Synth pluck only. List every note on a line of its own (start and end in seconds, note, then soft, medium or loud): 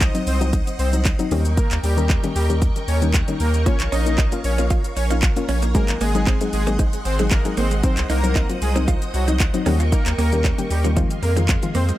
0.14 0.32 F#3 medium
0.14 0.32 C4 medium
0.14 0.32 D#4 medium
0.41 0.76 F#3 medium
0.41 0.76 C4 medium
0.41 0.76 D#4 medium
0.93 1.10 F#3 medium
0.93 1.10 C4 medium
0.93 1.11 D#4 medium
1.19 1.31 F#3 medium
1.19 1.31 C4 medium
1.19 1.32 D#4 loud
1.31 1.83 D#3 loud
1.31 1.84 G3 medium
1.31 1.84 A#3 medium
1.31 1.84 C#4 medium
1.31 1.84 G4 loud
1.97 2.15 D#3 medium
1.97 2.15 G3 medium
1.97 2.15 A#3 medium
1.97 2.15 C#4 medium
1.97 2.15 A#4 medium
2.23 2.41 D#3 medium
2.23 2.41 G3 medium
2.23 2.41 A#3 medium
2.23 2.41 C#4 medium
2.23 2.41 G4 medium
2.50 2.85 D#3 medium
2.50 2.85 G3 medium
2.50 2.85 A#3 medium
2.50 2.85 C#4 medium
2.50 2.85 G4 medium
3.02 3.19 D#3 medium
3.02 3.19 G3 medium
3.02 3.19 A#3 medium
3.02 3.19 C#4 medium
3.02 3.19 D#4 medium
3.28 3.55 D#3 medium
3.28 3.55 G3 medium
3.28 3.55 A#3 medium
3.28 3.55 C#4 medium
3.28 3.55 D#4 medium
3.66 3.93 A#3 medium
3.66 3.93 C#4 medium
3.66 3.93 F4 medium
4.06 4.23 A#3 medium
4.06 4.24 C#4 medium
4.06 4.24 D#4 medium
4.32 4.50 A#3 medium
4.32 4.50 C#4 medium
4.32 4.50 F4 medium
4.58 4.93 A#3 medium
4.58 4.94 C#4 medium
4.58 4.94 F4 medium
5.10 5.28 A#3 medium
5.10 5.28 C#4 medium
5.10 5.28 F4 medium
5.36 5.63 A#3 medium
5.36 5.63 C#4 medium
5.36 5.63 F4 loud
5.75 6.02 F#3 medium
5.75 6.02 G#3 medium
5.75 6.02 C4 medium
5.75 6.02 D#4 medium
5.75 6.02 G#4 medium
6.15 6.32 F#3 medium
6.15 6.32 G#3 medium
6.15 6.32 C4 medium
6.15 6.32 D#4 medium
6.15 6.32 G#4 medium
6.41 6.58 F#3 medium
6.41 6.58 G#3 medium
6.41 6.58 C4 medium
6.41 6.58 D#4 medium
6.41 6.58 G#4 medium
6.67 7.02 F#3 medium
6.67 7.02 G#3 medium
6.67 7.02 C4 medium
6.67 7.02 D#4 medium
6.67 7.02 G#4 medium
7.19 7.36 F#3 medium
7.19 7.36 G#3 medium
7.19 7.36 C4 medium
7.19 7.37 D#4 medium
7.19 7.37 G#4 medium
7.45 7.72 F#3 medium
7.45 7.72 G#3 medium
7.45 7.72 C4 medium
7.45 7.72 D#4 medium
7.45 7.72 G#4 medium
7.83 8.10 F#3 medium
7.83 8.10 C4 medium
7.83 8.11 D#4 medium
8.23 8.41 F#3 medium
8.23 8.41 C4 medium
8.23 8.41 D#4 medium
8.49 8.67 F#3 medium
8.49 8.67 C4 medium
8.49 8.67 F4 medium
8.75 9.11 F#3 medium
8.75 9.11 C4 medium
8.75 9.11 D#4 medium
9.28 9.45 F#3 medium
9.28 9.45 C4 medium
9.28 9.45 D#4 medium
9.54 9.66 F#3 loud
9.54 9.66 C4 medium
9.54 9.66 D#4 loud
9.66 10.18 D#3 loud
9.66 10.18 G3 medium
9.66 10.18 A#3 medium
9.66 10.18 C#4 medium
9.66 10.18 G4 loud
10.32 10.50 D#3 medium
10.32 10.50 G3 medium
10.32 10.50 A#3 medium
10.32 10.50 C#4 medium
10.32 10.50 G4 medium
10.58 10.76 D#3 medium
10.58 10.76 G3 medium
10.58 10.76 A#3 medium
10.58 10.76 C#4 medium
10.58 10.76 G4 medium
10.84 10.95 D#3 medium
10.84 10.97 G3 medium
10.84 10.97 A#3 medium
10.84 10.97 C#4 medium
10.84 10.96 F4 medium
10.97 11.28 D#3 loud
10.97 11.28 F3 medium
10.97 11.28 G#3 medium
10.97 11.28 C4 medium
10.97 11.28 F4 loud
11.36 11.54 D#3 medium
11.36 11.54 F3 medium
11.36 11.54 G#3 medium
11.36 11.54 C4 medium
11.36 11.54 F4 medium
11.63 11.89 D#3 medium
11.63 11.89 F3 medium
11.63 11.89 G#3 medium
11.63 11.90 C4 medium
11.63 11.90 F4 medium